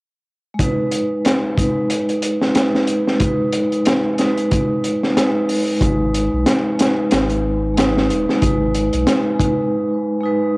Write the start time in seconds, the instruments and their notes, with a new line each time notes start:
0.54 vibraphone G#3
0.59 vibraphone D#4, kick, closed hi-hat
0.64 vibraphone B4
0.92 closed hi-hat
1.25 snare, closed hi-hat
1.52 vibraphone G#3
1.58 vibraphone D#4, kick, closed hi-hat
1.63 vibraphone B4
1.90 closed hi-hat
2.09 closed hi-hat
2.22 closed hi-hat
2.41 snare
2.53 vibraphone G#3 D#4, snare, closed hi-hat
2.58 vibraphone B4
2.75 snare
2.87 closed hi-hat
3.07 snare
3.15 vibraphone G#3
3.20 vibraphone D#4, kick, closed hi-hat
3.25 vibraphone B4
3.52 closed hi-hat
3.72 closed hi-hat
3.85 snare, closed hi-hat
4.14 vibraphone G#3
4.18 vibraphone D#4, snare, closed hi-hat
4.24 vibraphone B4
4.37 closed hi-hat
4.51 kick, closed hi-hat
4.84 closed hi-hat
5.03 snare
5.15 vibraphone G#3 D#4, snare, closed hi-hat
5.19 vibraphone B4
5.49 open hi-hat
5.77 vibraphone G#3
5.81 sub bass G#1, vibraphone D#4, kick, closed hi-hat
5.87 vibraphone B4
6.14 closed hi-hat
6.33 sub bass B1
6.46 snare, closed hi-hat
6.75 vibraphone G#3
6.79 vibraphone D#4, snare, closed hi-hat
6.85 vibraphone B4
7.11 sub bass G#1, snare, closed hi-hat
7.30 closed hi-hat
7.74 vibraphone G#3 D#4, closed hi-hat
7.78 vibraphone B4, snare
7.97 snare
8.10 sub bass D#1, closed hi-hat
8.29 snare
8.37 vibraphone G#3
8.42 sub bass G#1, vibraphone D#4, kick, closed hi-hat
8.46 vibraphone B4
8.75 closed hi-hat
8.93 sub bass B1, closed hi-hat
9.07 snare, closed hi-hat
9.35 vibraphone G#3
9.40 vibraphone D#4, kick, closed hi-hat
9.44 vibraphone B4
10.21 vibraphone G#3 D#4
10.26 vibraphone B4